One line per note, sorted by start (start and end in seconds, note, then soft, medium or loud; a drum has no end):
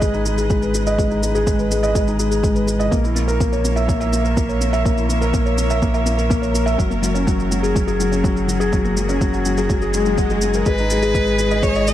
0.00 2.90 G#1 medium
0.00 0.02 G#3 medium
0.00 2.92 G#3 medium
0.00 0.13 G#3 medium
0.00 0.14 D#4 medium
0.00 0.38 G#4 medium
0.00 4.45 G#4 medium
0.00 0.62 B4 medium
0.00 2.92 B4 medium
0.00 0.87 D#5 medium
0.00 2.92 D#5 medium
0.00 kick medium
0.00 shaker soft
0.14 0.25 D#4 medium
0.14 shaker soft
0.26 0.33 G#3 medium
0.26 shaker medium
0.38 0.45 G#4 medium
0.38 shaker soft
0.50 0.57 G#3 medium
0.50 kick loud
0.50 shaker soft
0.62 0.74 B4 medium
0.62 shaker soft
0.74 0.86 G#3 medium
0.74 shaker medium
0.87 0.98 D#5 medium
0.87 shaker soft
0.98 1.10 G#3 medium
0.98 kick medium
0.98 shaker soft
1.11 1.22 D#4 medium
1.11 shaker soft
1.23 1.30 G#3 medium
1.23 shaker medium
1.35 1.46 G#4 medium
1.35 shaker soft
1.47 1.54 G#3 medium
1.47 kick loud
1.47 shaker soft
1.59 1.66 B4 medium
1.59 shaker soft
1.71 1.78 G#3 medium
1.71 shaker medium
1.83 1.95 D#5 medium
1.83 shaker soft
1.95 2.07 G#3 medium
1.95 kick medium
1.95 shaker soft
2.07 2.19 D#4 medium
2.07 shaker soft
2.19 2.26 G#3 medium
2.19 shaker medium
2.31 2.38 G#4 medium
2.31 shaker soft
2.43 2.50 G#3 medium
2.43 kick medium
2.43 shaker soft
2.55 2.67 B4 medium
2.55 shaker soft
2.67 2.79 G#3 medium
2.67 shaker medium
2.79 2.91 D#5 medium
2.79 shaker soft
2.91 6.77 A#1 medium
2.91 3.03 A#3 medium
2.91 7.72 A#3 medium
2.91 kick medium
2.91 shaker soft
2.95 10.66 A#4 medium
3.01 3.15 E4 medium
3.01 8.34 C#5 medium
3.01 shaker soft
3.15 3.23 A#3 medium
3.15 shaker medium
3.20 8.34 E5 medium
3.28 3.40 A#4 medium
3.28 shaker soft
3.40 3.47 A#3 medium
3.40 kick medium
3.40 shaker soft
3.52 3.59 C#5 medium
3.52 shaker soft
3.64 3.71 A#3 medium
3.64 shaker medium
3.76 3.88 E5 medium
3.76 shaker soft
3.88 4.00 A#3 medium
3.88 kick medium
3.88 shaker soft
4.00 4.12 E5 medium
4.00 shaker soft
4.13 4.20 A#3 medium
4.13 shaker medium
4.24 4.32 A#4 medium
4.24 shaker soft
4.37 4.44 A#3 medium
4.37 kick medium
4.37 shaker soft
4.49 4.61 C#5 medium
4.49 shaker soft
4.61 4.73 A#3 medium
4.61 shaker medium
4.73 4.85 E5 medium
4.73 shaker soft
4.85 4.97 A#3 medium
4.85 kick medium
4.85 shaker soft
4.97 5.09 E4 medium
4.97 shaker soft
5.09 5.16 A#3 medium
5.09 shaker medium
5.21 5.33 A#4 medium
5.21 shaker soft
5.33 5.41 A#3 medium
5.33 kick medium
5.33 shaker soft
5.46 5.53 C#5 medium
5.46 shaker soft
5.58 5.65 A#3 medium
5.58 shaker medium
5.70 5.82 E5 medium
5.70 shaker soft
5.82 5.94 A#3 medium
5.82 kick medium
5.82 shaker soft
5.94 6.06 E5 medium
5.94 shaker soft
6.06 6.13 A#3 medium
6.06 shaker medium
6.18 6.25 A#4 medium
6.18 shaker soft
6.30 6.37 A#3 medium
6.30 kick medium
6.30 shaker soft
6.42 6.54 C#5 medium
6.42 shaker soft
6.54 6.66 A#3 medium
6.54 shaker medium
6.66 6.78 E5 medium
6.66 shaker soft
6.78 10.64 F#1 medium
6.78 6.90 F#3 medium
6.78 10.66 F#3 medium
6.78 kick medium
6.78 shaker soft
6.88 7.02 A#3 medium
6.88 11.94 F#4 medium
6.88 shaker soft
7.02 7.10 F#3 medium
7.02 shaker medium
7.14 7.26 C#4 medium
7.14 shaker soft
7.27 7.34 F#3 loud
7.27 kick medium
7.27 shaker soft
7.35 7.46 F#4 medium
7.35 11.94 G#4 medium
7.40 shaker soft
7.51 7.58 F#3 medium
7.51 shaker medium
7.63 7.75 G#4 medium
7.63 shaker soft
7.75 7.87 F#3 medium
7.75 kick medium
7.75 shaker soft
7.87 7.99 G#4 medium
7.87 shaker soft
8.00 8.07 F#3 medium
8.00 shaker medium
8.12 8.19 C#4 medium
8.12 shaker soft
8.24 8.31 F#3 loud
8.24 kick medium
8.24 shaker soft
8.36 8.48 F#4 medium
8.36 shaker soft
8.48 8.60 F#3 medium
8.48 shaker medium
8.60 8.72 G#4 medium
8.60 shaker soft
8.72 8.84 F#3 medium
8.72 kick medium
8.72 shaker soft
8.85 8.96 A#3 medium
8.85 shaker soft
8.97 9.04 F#3 medium
8.97 shaker medium
9.09 9.20 C#4 medium
9.09 shaker soft
9.21 9.28 F#3 medium
9.21 kick medium
9.21 shaker soft
9.33 9.40 F#4 medium
9.33 shaker soft
9.45 9.53 F#3 medium
9.45 shaker medium
9.57 9.69 G#4 medium
9.57 shaker soft
9.70 9.81 F#3 medium
9.70 kick medium
9.70 swell soft
9.70 shaker soft
9.82 9.93 G#4 medium
9.82 shaker soft
9.94 10.05 G#3 medium
9.94 shaker medium
10.06 10.18 F#3 medium
10.06 shaker soft
10.18 10.30 F#4 medium
10.18 kick medium
10.18 shaker soft
10.30 10.42 G#3 medium
10.30 shaker soft
10.42 10.54 F#3 medium
10.42 shaker medium
10.54 10.66 A#4 medium
10.54 shaker soft
10.66 11.94 G#1 medium
10.66 11.94 G#3 medium
10.66 10.78 G#3 medium
10.66 11.65 B4 medium
10.66 kick medium
10.66 shaker soft
10.78 10.90 D#4 medium
10.78 shaker soft
10.90 10.98 G#3 medium
10.90 shaker medium
10.95 11.94 B4 medium
11.02 11.14 G#4 medium
11.02 shaker soft
11.15 11.22 G#3 medium
11.15 kick medium
11.15 shaker soft
11.27 11.34 B4 medium
11.27 shaker soft
11.39 11.46 G#3 medium
11.39 shaker medium
11.43 11.94 D#5 medium
11.51 11.62 D#5 medium
11.51 shaker soft
11.63 11.75 G#3 medium
11.63 11.89 C#5 medium
11.63 kick medium
11.63 shaker soft
11.75 11.87 D#5 medium
11.75 shaker soft
11.87 11.94 G#3 medium
11.87 11.94 D#5 medium
11.87 shaker medium